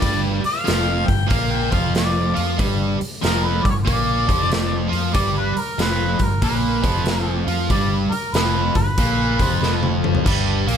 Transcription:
0.00 fingered electric bass G1, overdriven electric guitar G2 G3, kick, open hi-hat, crash
0.04 harmonica D5
0.42 harmonica F5, muted overdriven electric guitar stroke, open hi-hat
0.64 fingered electric bass F1, overdriven electric guitar F2 F3, snare, open hi-hat
1.06 fingered electric bass G1, overdriven electric guitar G2, harmonica G5, kick, open hi-hat
1.28 fingered electric bass A#1, overdriven electric guitar A#2 A#3, harmonica F5, kick, open hi-hat
1.53 harmonica G5
1.70 fingered electric bass F1, overdriven electric guitar F2 F3, harmonica F5, kick, open hi-hat
1.95 harmonica D5, snare, open hi-hat
2.33 fingered electric bass F2, overdriven electric guitar F3 F4, open hi-hat
2.58 fingered electric bass G1, overdriven electric guitar G2 G3, kick, open hi-hat
3.00 muted overdriven electric guitar stroke, muted fingered electric bass stroke, open hi-hat
3.21 fingered electric bass F1, overdriven electric guitar F2 F3, harmonica A#4, snare, open hi-hat
3.45 harmonica B4
3.62 fingered electric bass G1, overdriven electric guitar G2, harmonica D5, kick, open hi-hat
3.70 harmonica C#5
3.83 overdriven electric guitar A#2 A#3, harmonica D5
3.87 fingered electric bass A#1, kick, open hi-hat
4.26 fingered electric bass F1, overdriven electric guitar F2 F3, kick, open hi-hat
4.51 snare, open hi-hat
4.88 fingered electric bass F2, overdriven electric guitar F3 F4
4.93 open hi-hat
5.13 fingered electric bass G1, overdriven electric guitar G2 G3, harmonica D5, kick, open hi-hat
5.38 harmonica B4
5.55 muted overdriven electric guitar stroke, muted fingered electric bass stroke, open hi-hat
5.59 harmonica A#4
5.78 fingered electric bass F1, overdriven electric guitar F2 F3, harmonica B4, snare, open hi-hat
6.19 fingered electric bass G1, overdriven electric guitar G2, harmonica A#4, kick, open hi-hat
6.42 fingered electric bass A#1, overdriven electric guitar A#2 A#3, harmonica B4, kick, open hi-hat
6.82 fingered electric bass F1, overdriven electric guitar F2 F3, kick, open hi-hat
7.06 snare, open hi-hat
7.47 fingered electric bass F2, overdriven electric guitar F3 F4, open hi-hat
7.70 fingered electric bass G1, overdriven electric guitar G2 G3, harmonica D5, kick, open hi-hat
8.10 harmonica A#4, muted fingered electric bass stroke, muted overdriven electric guitar stroke, open hi-hat
8.33 fingered electric bass F1, overdriven electric guitar F2 F3, harmonica B4, snare, open hi-hat
8.75 fingered electric bass G1, overdriven electric guitar G2, harmonica B4, kick, open hi-hat
8.98 fingered electric bass A#1, overdriven electric guitar A#2 A#3, kick, open hi-hat
9.40 fingered electric bass F1, overdriven electric guitar F2 F3, kick, open hi-hat
9.61 fingered electric bass F1, overdriven electric guitar F2 F3, snare
9.83 high tom
10.04 mid tom
10.15 floor tom
10.24 fingered electric bass G1, overdriven electric guitar G2 G3, kick, crash
10.67 fingered electric bass A#1, overdriven electric guitar A#2 A#3, open hi-hat

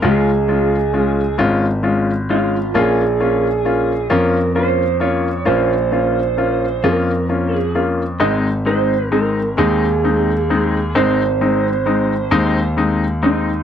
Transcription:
0.02 grand piano C#2 G#3 C#4 F4, electric slide guitar G#4
0.48 grand piano G#3 C#4 F4
0.93 grand piano G#3 C#4 F4
1.38 grand piano G#1 G#3 C#4 F4
1.83 grand piano G#3 C#4 F4
2.29 grand piano G#3 C#4 F4, electric slide guitar F4
2.74 grand piano A#1 A#3 C#4 F4, electric slide guitar G#4
3.20 grand piano A#3 C#4 F4
3.65 grand piano A#3 C#4 F4
4.10 grand piano F2 A#3 C#4 F4, electric slide guitar A#4
4.55 grand piano A#3 C#4 F4, electric slide guitar C5
5.00 grand piano A#3 C#4 F4, electric slide guitar C#5
5.45 grand piano A#1 A#3 C#4 F4, electric slide guitar C5
5.91 grand piano A#3 C#4 F4
6.37 grand piano A#3 C#4 F4
6.83 grand piano F2 A#3 C#4 F4, electric slide guitar A#4
7.29 grand piano A#3 C#4 F4
7.54 electric slide guitar G#4
7.75 grand piano A#3 C#4 F4
8.20 grand piano G#1 G#3 C4 D#4, electric slide guitar D#5
8.66 grand piano G#3 C4 D#4, electric slide guitar C5
9.12 grand piano G#3 C4 D#4, electric slide guitar A#4
9.57 grand piano D#2 G#3 C4 D#4, electric slide guitar G#4
10.04 grand piano G#3 C4 D#4
10.50 grand piano G#3 C4 D#4
10.95 grand piano G#1 G#3 C4 D#4, electric slide guitar C5
11.41 grand piano G#3 C4 D#4
11.86 grand piano G#3 C4 D#4
12.31 grand piano D#2 G#3 C4 D#4
12.77 grand piano G#3 C4 D#4
13.22 grand piano G#3 C4 D#4, electric slide guitar D#4

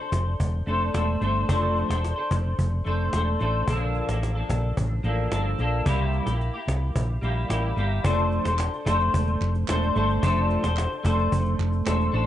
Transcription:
0.00 clean electric guitar D4 A4 C5
0.12 fingered electric bass F1, cajon bass, cajon slap
0.40 fingered electric bass E1, cajon bass
0.66 fingered electric bass F1, clean electric guitar A3 D4 A4 C5, cajon slap
0.93 fingered electric bass E1, clean electric guitar A3 D4 A4 C5, cajon slap
1.21 fingered electric bass G1, clean electric guitar A3 D4 A4 C5, cajon slap
1.49 fingered electric bass F1, clean electric guitar F3 A3 D4 A4 C5, cajon bass
1.76 cajon slap
1.89 fingered electric bass E1, clean electric guitar D4 A4 C5, cajon slap
2.05 cajon slap
2.16 clean electric guitar D4 A4 C5
2.31 fingered electric bass F1, cajon bass, cajon slap
2.59 fingered electric bass F1, cajon bass
2.85 fingered electric bass F1, clean electric guitar A3 D4 A4 C5, cajon slap
3.12 fingered electric bass E1, clean electric guitar A3 D4 A4 C5, cajon slap
3.40 fingered electric bass A1, clean electric guitar A3 D4 A4 C5, cajon slap
3.68 fingered electric bass A#1, clean electric guitar A#2 D3 F3 A#3 D4 A4, cajon bass
3.95 cajon slap
4.09 fingered electric bass A1, clean electric guitar F3 A#3 D4 A4, cajon slap
4.23 cajon slap
4.35 clean electric guitar F3 A#3 D4 A4
4.49 fingered electric bass A#1, cajon bass, cajon slap
4.77 fingered electric bass A1, cajon bass
5.03 fingered electric bass A1, clean electric guitar F3 A#3 D4 A4, cajon slap
5.31 fingered electric bass G1, clean electric guitar F3 A#3 D4 A4, cajon slap
5.58 fingered electric bass A#1, clean electric guitar F3 A#3 D4 A4, cajon slap
5.86 fingered electric bass C2, clean electric guitar C3 G3 A#3 E4 G4, cajon bass
6.13 cajon slap
6.26 fingered electric bass A#1, clean electric guitar A#3 E4 G4, cajon slap
6.41 cajon slap
6.54 clean electric guitar A#3 E4 G4
6.67 fingered electric bass C2, cajon slap
6.96 fingered electric bass A#1, cajon bass
7.21 fingered electric bass A#1, clean electric guitar G3 A#3 E4 G4, cajon slap
7.49 fingered electric bass A1, clean electric guitar G3 A#3 E4 G4, cajon slap
7.76 fingered electric bass G1, clean electric guitar G3 A#3 E4 G4, cajon slap
8.04 fingered electric bass F1, clean electric guitar F3 A3 D4 A4 C5, cajon bass
8.18 cajon slap
8.31 cajon slap
8.44 fingered electric bass E1, clean electric guitar D4 A4 C5, cajon slap
8.59 cajon slap, clap
8.74 cajon slap
8.85 fingered electric bass F1, clean electric guitar A3 D4 A4 C5, cajon bass, cajon slap
9.00 cajon slap
9.14 fingered electric bass E1, cajon bass
9.27 cajon slap
9.41 fingered electric bass F1, cajon slap, clap
9.55 cajon slap
9.67 fingered electric bass E1, clean electric guitar A3 D4 A4 C5, cajon slap, clap
9.82 cajon slap
9.95 fingered electric bass G1, clean electric guitar A3 D4 A4 C5, cajon slap
10.10 cajon slap
10.22 fingered electric bass F1, clean electric guitar F3 A3 D4 A4 C5, cajon bass
10.37 cajon slap
10.50 cajon slap
10.63 fingered electric bass E1, clean electric guitar D4 A4 C5, cajon slap
10.77 cajon slap, clap
10.92 cajon slap
11.03 fingered electric bass F1, clean electric guitar A3 D4 A4 C5, cajon bass, cajon slap
11.19 cajon slap
11.32 fingered electric bass F1, cajon bass
11.45 cajon slap
11.59 fingered electric bass F1, cajon slap, clap
11.73 cajon slap
11.85 fingered electric bass E1, clean electric guitar A3 D4 A4 C5, cajon slap, clap
12.01 cajon slap
12.12 fingered electric bass A1, clean electric guitar A3 D4 A4 C5, cajon slap

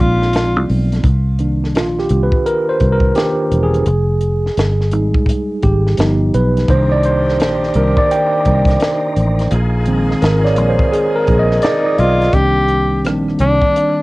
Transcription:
Already playing: tine electric piano F3 G#3 A#3 C4 D#4 D5
0.00 fingered electric bass A#1, tenor saxophone F4
0.22 snare
0.33 snare, closed hi-hat
0.56 fingered electric bass C2
0.69 fingered electric bass B1, open hi-hat
0.92 snare, closed hi-hat
1.03 fingered electric bass C2, kick, closed hi-hat
1.39 tine electric piano D#3 A#3 D4, closed hi-hat
1.64 snare
1.75 fingered electric bass A#1, tine electric piano F4, snare, closed hi-hat
1.99 tine electric piano G4, snare
2.09 fingered electric bass C2, closed hi-hat
2.23 tine electric piano B4
2.32 kick
2.46 tine electric piano A#4, closed hi-hat
2.69 tine electric piano C5
2.80 fingered electric bass C2, kick, closed hi-hat
2.92 tine electric piano A#4
3.00 kick
3.15 tine electric piano D#3 A#3 D4 G4, snare, closed hi-hat
3.52 fingered electric bass E1, closed hi-hat
3.63 tine electric piano G#4
3.74 closed hi-hat
3.86 fingered electric bass F1, closed hi-hat
4.21 closed hi-hat
4.46 snare
4.57 fingered electric bass G1, snare, closed hi-hat
4.81 snare
4.91 fingered electric bass G#1, tine electric piano G3 G#3 D#4, closed hi-hat
5.14 kick
5.26 kick, closed hi-hat
5.62 fingered electric bass G#1, tine electric piano G4, kick, closed hi-hat
5.87 snare
5.97 fingered electric bass G1, tine electric piano F3 B3 D#4, snare, closed hi-hat
6.34 fingered electric bass B1, tine electric piano B4, closed hi-hat
6.57 snare, closed hi-hat
6.68 fingered electric bass C2, saxophone section D#3 D4 G4, tonewheel organ D#3 C4 D4 A#4, tine electric piano D#3 A#3 D4 C5, kick, closed hi-hat
6.92 tine electric piano D5
7.03 tine electric piano C5, closed hi-hat
7.29 snare
7.40 fingered electric bass A#1, snare, closed hi-hat
7.63 snare
7.74 fingered electric bass C2, tine electric piano D#3 A#3 D4 A#4, closed hi-hat
7.97 tine electric piano D5, kick
8.11 tine electric piano G5, closed hi-hat
8.45 fingered electric bass C2, kick, closed hi-hat
8.65 kick, snare, closed hi-hat
8.80 snare, closed hi-hat
9.16 fingered electric bass A1, closed hi-hat
9.39 snare, closed hi-hat
9.51 fingered electric bass A#1, tonewheel organ F3 A#3 D#4 G#4, saxophone section F3 D#4 G#4, closed hi-hat
9.86 tine electric piano D#3 G#3 C4, closed hi-hat
10.11 snare
10.22 fingered electric bass G#1, tine electric piano A#4, snare, closed hi-hat
10.44 tine electric piano C#5 D5, snare
10.56 fingered electric bass A#1, closed hi-hat
10.69 tine electric piano C5
10.79 kick
10.92 tine electric piano G#4, closed hi-hat
11.16 tine electric piano A#4
11.27 fingered electric bass A#1, kick, closed hi-hat
11.39 tine electric piano D#5
11.51 snare
11.62 tenor saxophone D#4, tine electric piano D5, snare, closed hi-hat
11.84 tine electric piano D5 D#5
11.98 fingered electric bass B1, tenor saxophone F4, closed hi-hat
12.22 snare, closed hi-hat
12.33 fingered electric bass C2, tine electric piano D#3 G3 A#3 C4 D4, tenor saxophone G4, kick, closed hi-hat
12.68 closed hi-hat
13.04 fingered electric bass A#1, tine electric piano D#3 G3 A#3 C4 D4, cross-stick, closed hi-hat
13.28 cross-stick
13.39 fingered electric bass C2, tenor saxophone D4, closed hi-hat
13.62 kick
13.76 closed hi-hat

